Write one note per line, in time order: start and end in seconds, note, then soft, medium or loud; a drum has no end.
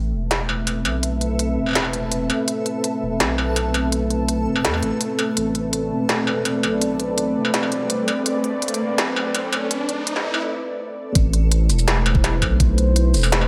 0.00 0.14 A1 loud
0.00 11.11 A3 medium
0.00 11.11 C4 medium
0.00 10.43 A4 medium
0.00 11.11 B4 medium
0.00 5.33 E5 medium
0.13 0.87 E1 medium
0.31 snare loud
0.31 closed hi-hat medium
0.49 struck metal medium
0.67 closed hi-hat medium
0.67 struck metal soft
0.85 1.59 B1 medium
0.85 closed hi-hat soft
0.85 struck metal medium
1.03 closed hi-hat medium
1.21 closed hi-hat soft
1.39 closed hi-hat medium
1.57 2.29 E1 medium
1.66 struck metal soft
1.69 struck metal soft
1.71 struck metal soft
1.73 snare loud
1.73 closed hi-hat medium
1.73 struck metal soft
1.78 struck metal soft
1.80 struck metal soft
1.82 struck metal soft
1.84 struck metal soft
1.93 closed hi-hat soft
2.12 closed hi-hat medium
2.30 closed hi-hat soft
2.30 struck metal medium
2.48 closed hi-hat medium
2.66 closed hi-hat soft
2.84 closed hi-hat medium
3.02 3.22 E1 medium
3.20 4.48 B1 loud
3.20 snare loud
3.20 closed hi-hat medium
3.38 struck metal medium
3.56 closed hi-hat medium
3.56 struck metal soft
3.74 closed hi-hat soft
3.74 struck metal medium
3.92 closed hi-hat medium
4.10 closed hi-hat soft
4.28 closed hi-hat medium
4.46 4.66 E1 medium
4.56 struck metal medium
4.65 4.81 E2 medium
4.65 snare loud
4.65 closed hi-hat medium
4.74 struck metal soft
4.83 4.91 A1 medium
4.83 closed hi-hat soft
5.01 closed hi-hat medium
5.19 closed hi-hat soft
5.19 struck metal medium
5.37 5.93 A1 medium
5.37 11.11 D5 medium
5.37 closed hi-hat medium
5.37 riser medium
5.55 closed hi-hat soft
5.73 closed hi-hat medium
5.91 6.65 E1 medium
6.09 snare loud
6.09 closed hi-hat medium
6.27 struck metal medium
6.45 closed hi-hat medium
6.45 struck metal medium
6.63 7.37 B1 medium
6.63 closed hi-hat soft
6.63 struck metal medium
6.82 closed hi-hat medium
7.00 closed hi-hat soft
7.18 closed hi-hat medium
7.36 8.07 E1 medium
7.45 struck metal medium
7.54 snare loud
7.54 closed hi-hat medium
7.63 struck metal medium
7.72 closed hi-hat soft
7.90 closed hi-hat medium
8.08 closed hi-hat soft
8.08 struck metal medium
8.26 closed hi-hat medium
8.44 closed hi-hat soft
8.62 closed hi-hat medium
8.68 closed hi-hat soft
8.74 closed hi-hat soft
8.80 9.00 E1 medium
8.98 10.26 B1 loud
8.98 snare loud
8.98 closed hi-hat medium
9.16 struck metal medium
9.35 closed hi-hat medium
9.35 struck metal medium
9.53 closed hi-hat soft
9.53 struck metal medium
9.71 closed hi-hat medium
9.89 closed hi-hat soft
10.07 closed hi-hat medium
10.16 snare soft
10.25 10.43 E1 medium
10.34 struck metal medium
11.15 11.71 A1 loud
11.15 13.48 A3 medium
11.15 13.48 E4 medium
11.15 13.48 B4 medium
11.15 13.48 C5 medium
11.15 kick loud
11.15 closed hi-hat medium
11.33 closed hi-hat soft
11.52 closed hi-hat medium
11.70 12.43 E1 medium
11.70 closed hi-hat soft
11.70 shaker medium
11.79 shaker medium
11.88 snare loud
11.88 closed hi-hat medium
12.06 closed hi-hat soft
12.06 struck metal medium
12.15 kick loud
12.24 snare medium
12.24 closed hi-hat medium
12.24 struck metal medium
12.42 13.16 B1 medium
12.42 kick medium
12.42 closed hi-hat soft
12.42 struck metal medium
12.60 kick loud
12.60 closed hi-hat medium
12.78 closed hi-hat soft
12.96 closed hi-hat medium
13.14 13.48 E1 medium
13.14 closed hi-hat soft
13.14 shaker medium
13.16 shaker medium
13.19 shaker soft
13.21 struck metal medium
13.21 shaker soft
13.23 shaker medium
13.25 shaker soft
13.28 shaker soft
13.30 snare loud
13.30 closed hi-hat medium
13.30 shaker soft
13.41 struck metal medium